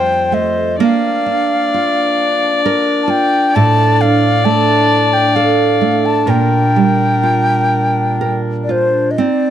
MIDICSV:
0, 0, Header, 1, 5, 480
1, 0, Start_track
1, 0, Tempo, 933126
1, 407, Time_signature, 3, 2, 24, 8
1, 883, Tempo, 910470
1, 3283, Tempo, 970874
1, 4881, End_track
2, 0, Start_track
2, 0, Title_t, "Flute"
2, 0, Program_c, 0, 73
2, 0, Note_on_c, 0, 79, 79
2, 174, Note_on_c, 0, 75, 80
2, 182, Note_off_c, 0, 79, 0
2, 412, Note_off_c, 0, 75, 0
2, 422, Note_on_c, 0, 77, 75
2, 1350, Note_off_c, 0, 77, 0
2, 1574, Note_on_c, 0, 81, 67
2, 1612, Note_on_c, 0, 79, 93
2, 1620, Note_off_c, 0, 81, 0
2, 1851, Note_on_c, 0, 81, 98
2, 1859, Note_off_c, 0, 79, 0
2, 2093, Note_on_c, 0, 77, 88
2, 2101, Note_off_c, 0, 81, 0
2, 2323, Note_on_c, 0, 81, 100
2, 2331, Note_off_c, 0, 77, 0
2, 2684, Note_on_c, 0, 79, 88
2, 2692, Note_off_c, 0, 81, 0
2, 2800, Note_on_c, 0, 77, 83
2, 2808, Note_off_c, 0, 79, 0
2, 3171, Note_on_c, 0, 81, 81
2, 3179, Note_off_c, 0, 77, 0
2, 3297, Note_on_c, 0, 79, 80
2, 3304, Note_off_c, 0, 81, 0
2, 4334, Note_off_c, 0, 79, 0
2, 4452, Note_on_c, 0, 74, 52
2, 4490, Note_on_c, 0, 72, 75
2, 4497, Note_off_c, 0, 74, 0
2, 4687, Note_on_c, 0, 75, 58
2, 4695, Note_off_c, 0, 72, 0
2, 4733, Note_on_c, 0, 74, 68
2, 4741, Note_off_c, 0, 75, 0
2, 4881, Note_off_c, 0, 74, 0
2, 4881, End_track
3, 0, Start_track
3, 0, Title_t, "Viola"
3, 0, Program_c, 1, 41
3, 0, Note_on_c, 1, 72, 96
3, 383, Note_off_c, 1, 72, 0
3, 403, Note_on_c, 1, 74, 109
3, 1823, Note_off_c, 1, 74, 0
3, 1835, Note_on_c, 1, 74, 121
3, 3279, Note_on_c, 1, 70, 86
3, 3287, Note_off_c, 1, 74, 0
3, 4477, Note_off_c, 1, 70, 0
3, 4881, End_track
4, 0, Start_track
4, 0, Title_t, "Nylon-string guitar"
4, 0, Program_c, 2, 24
4, 0, Note_on_c, 2, 41, 66
4, 0, Note_on_c, 2, 55, 49
4, 0, Note_on_c, 2, 57, 53
4, 0, Note_on_c, 2, 65, 58
4, 159, Note_off_c, 2, 57, 0
4, 165, Note_on_c, 2, 57, 56
4, 409, Note_off_c, 2, 41, 0
4, 412, Note_off_c, 2, 65, 0
4, 412, Note_on_c, 2, 58, 75
4, 414, Note_on_c, 2, 70, 65
4, 455, Note_off_c, 2, 57, 0
4, 458, Note_off_c, 2, 55, 0
4, 649, Note_on_c, 2, 62, 53
4, 897, Note_on_c, 2, 65, 58
4, 1366, Note_off_c, 2, 70, 0
4, 1378, Note_on_c, 2, 70, 64
4, 1598, Note_off_c, 2, 65, 0
4, 1600, Note_on_c, 2, 65, 59
4, 1849, Note_off_c, 2, 58, 0
4, 1853, Note_off_c, 2, 70, 0
4, 1854, Note_on_c, 2, 45, 85
4, 1859, Note_on_c, 2, 69, 69
4, 2100, Note_off_c, 2, 62, 0
4, 2102, Note_on_c, 2, 62, 57
4, 2324, Note_off_c, 2, 65, 0
4, 2326, Note_on_c, 2, 57, 60
4, 2797, Note_off_c, 2, 69, 0
4, 2803, Note_on_c, 2, 69, 61
4, 3037, Note_off_c, 2, 57, 0
4, 3043, Note_on_c, 2, 57, 57
4, 3281, Note_off_c, 2, 45, 0
4, 3283, Note_on_c, 2, 46, 76
4, 3285, Note_off_c, 2, 69, 0
4, 3287, Note_on_c, 2, 70, 65
4, 3331, Note_off_c, 2, 57, 0
4, 3525, Note_off_c, 2, 62, 0
4, 3527, Note_on_c, 2, 55, 51
4, 3760, Note_on_c, 2, 65, 53
4, 4235, Note_off_c, 2, 70, 0
4, 4243, Note_on_c, 2, 70, 57
4, 4474, Note_off_c, 2, 65, 0
4, 4480, Note_on_c, 2, 65, 54
4, 4722, Note_off_c, 2, 46, 0
4, 4724, Note_on_c, 2, 60, 67
4, 4771, Note_off_c, 2, 65, 0
4, 4775, Note_off_c, 2, 70, 0
4, 4881, Note_off_c, 2, 55, 0
4, 4881, Note_off_c, 2, 60, 0
4, 4881, End_track
5, 0, Start_track
5, 0, Title_t, "Woodwind section"
5, 0, Program_c, 3, 71
5, 0, Note_on_c, 3, 55, 59
5, 0, Note_on_c, 3, 57, 58
5, 0, Note_on_c, 3, 65, 65
5, 392, Note_off_c, 3, 65, 0
5, 393, Note_off_c, 3, 55, 0
5, 394, Note_off_c, 3, 57, 0
5, 401, Note_on_c, 3, 46, 65
5, 401, Note_on_c, 3, 62, 74
5, 406, Note_on_c, 3, 53, 60
5, 1761, Note_off_c, 3, 46, 0
5, 1850, Note_on_c, 3, 45, 72
5, 1854, Note_on_c, 3, 57, 66
5, 3259, Note_off_c, 3, 53, 0
5, 3269, Note_off_c, 3, 45, 0
5, 3271, Note_off_c, 3, 57, 0
5, 3291, Note_on_c, 3, 46, 65
5, 3292, Note_on_c, 3, 55, 58
5, 4698, Note_off_c, 3, 62, 0
5, 4712, Note_off_c, 3, 46, 0
5, 4712, Note_off_c, 3, 55, 0
5, 4721, Note_on_c, 3, 48, 56
5, 4723, Note_on_c, 3, 55, 52
5, 4723, Note_on_c, 3, 63, 64
5, 4881, Note_off_c, 3, 48, 0
5, 4881, Note_off_c, 3, 55, 0
5, 4881, Note_off_c, 3, 63, 0
5, 4881, End_track
0, 0, End_of_file